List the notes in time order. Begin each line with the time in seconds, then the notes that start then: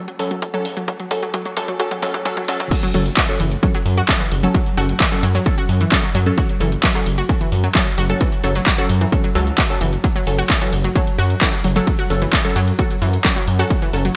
0.08 F#3, closed hi-hat
0.19 F#2 F#3 C#4 A4, open hi-hat
0.31 F#3, closed hi-hat
0.42 kick, closed hi-hat
0.54 F#3 C#4 A4, closed hi-hat
0.65 F#1, open hi-hat
0.77 F#3, closed hi-hat
0.88 F#3, kick, closed hi-hat
1.00 F#3, closed hi-hat
1.11 F#1 F#3 C#4 A4, kick, open hi-hat
1.23 F#3, closed hi-hat
1.34 F#3, kick, closed hi-hat
1.45 F#3, closed hi-hat
1.57 F#2 F#3 C#4 A4, kick, open hi-hat
1.68 F#3, closed hi-hat
1.80 F#3 C#4 A4, kick, closed hi-hat
1.91 F#3, kick, closed hi-hat
2.02 C#2 F#3 C#4 A4, kick, open hi-hat
2.14 F#3, kick, closed hi-hat
2.25 F#3 C#4 A4, kick, closed hi-hat
2.37 F#3, kick, closed hi-hat
2.48 F#3 C#4 A4, kick, open hi-hat
2.60 F#3, kick, closed hi-hat
2.71 F#3, kick, closed hi-hat, crash
2.83 F#3, closed hi-hat
2.94 F#1 F#3 C#4 A4, open hi-hat
3.06 closed hi-hat
3.17 F#4, kick, clap, closed hi-hat
3.29 F#3 C#4 A4, closed hi-hat
3.40 F#1 E3, open hi-hat
3.52 closed hi-hat
3.63 F#3 C#4 A4, kick, closed hi-hat
3.75 F#3, closed hi-hat
3.86 F#2, open hi-hat
3.97 F#4, closed hi-hat
4.09 F#3 C#4 A4, kick, clap, closed hi-hat
4.20 E3, closed hi-hat
4.31 F#1, open hi-hat
4.43 F#3 C#4 A4, closed hi-hat
4.54 F#3, kick, closed hi-hat
4.66 closed hi-hat
4.77 F#1 F#3 C#4 F#4 A4, open hi-hat
4.89 closed hi-hat
5.00 E3, kick, clap, closed hi-hat
5.12 F#3 C#4 A4, closed hi-hat
5.23 F#2 F#3, open hi-hat
5.35 F#3, closed hi-hat
5.46 F#3 C#4 A4, kick, closed hi-hat
5.58 F#4, closed hi-hat
5.69 F#2, open hi-hat
5.81 E3, closed hi-hat
5.92 F#3 C#4 A4, kick, clap, closed hi-hat
6.03 F#3, closed hi-hat
6.15 F#2 F#3, open hi-hat
6.26 F#3 C#4 A4, closed hi-hat
6.38 F#4, kick, closed hi-hat
6.49 closed hi-hat
6.60 F#1 E3 F#3 C#4 A4, open hi-hat
6.72 closed hi-hat
6.83 F#3, kick, clap, closed hi-hat
6.95 F#3 C#4 A4, closed hi-hat
7.06 F#1, open hi-hat
7.18 F#4, closed hi-hat
7.29 F#3 C#4 A4, kick, closed hi-hat
7.41 E3, closed hi-hat
7.52 F#2, open hi-hat
7.64 F#3, closed hi-hat
7.75 F#3 C#4 A4, kick, clap, closed hi-hat
7.87 closed hi-hat
7.98 F#1 F#4, open hi-hat
8.10 F#3 C#4 A4, closed hi-hat
8.21 E3, kick, closed hi-hat
8.32 closed hi-hat
8.44 F#1 F#3 C#4 A4, open hi-hat
8.55 F#3, closed hi-hat
8.67 kick, clap, closed hi-hat
8.78 F#3 C#4 F#4 A4, closed hi-hat
8.89 F#2, open hi-hat
9.01 E3, closed hi-hat
9.12 F#3 C#4 A4, kick, closed hi-hat
9.24 F#3, closed hi-hat
9.35 C#2 F#3 C#4 A4, open hi-hat
9.47 closed hi-hat
9.58 F#4, kick, clap, closed hi-hat
9.70 F#3 C#4 A4, closed hi-hat
9.81 F#1 E3, open hi-hat
9.93 closed hi-hat
10.04 F#3, kick, closed hi-hat, ride
10.16 F#3, closed hi-hat, ride
10.27 F#1 F#3 C#4 A4, open hi-hat, ride
10.39 F#4, closed hi-hat, ride
10.50 kick, clap, closed hi-hat, ride
10.61 E3 F#3 C#4 A4, closed hi-hat, ride
10.73 F#1, open hi-hat, ride
10.84 F#3, closed hi-hat, ride
10.95 F#3 C#4 A4, kick, closed hi-hat, ride
11.07 closed hi-hat, ride
11.18 F#2 F#4, open hi-hat, ride
11.30 closed hi-hat, ride
11.41 E3 F#3 C#4 A4, kick, clap, closed hi-hat, ride
11.53 closed hi-hat, ride
11.64 F#1 F#3, open hi-hat, ride
11.76 F#3 C#4 A4, closed hi-hat, ride
11.87 kick, closed hi-hat, ride
11.99 F#4, closed hi-hat, ride
12.10 F#1 F#3 C#4 A4, open hi-hat, ride
12.22 E3, closed hi-hat, ride
12.33 kick, clap, closed hi-hat, ride
12.45 F#3 C#4 A4, closed hi-hat, ride
12.56 F#2 F#3, open hi-hat, ride
12.68 closed hi-hat, ride
12.79 F#3 C#4 F#4 A4, kick, closed hi-hat, ride
12.91 closed hi-hat, ride
13.02 F#2 E3, open hi-hat, ride
13.13 closed hi-hat, ride
13.25 F#3 C#4 A4, kick, clap, closed hi-hat, ride
13.36 F#3, closed hi-hat, ride
13.47 F#2, open hi-hat, ride
13.59 F#3 C#4 F#4 A4, closed hi-hat, ride
13.70 kick, closed hi-hat, ride
13.82 E3, closed hi-hat, ride
13.93 F#1 F#3 C#4 A4, open hi-hat, ride
14.05 F#3, closed hi-hat, ride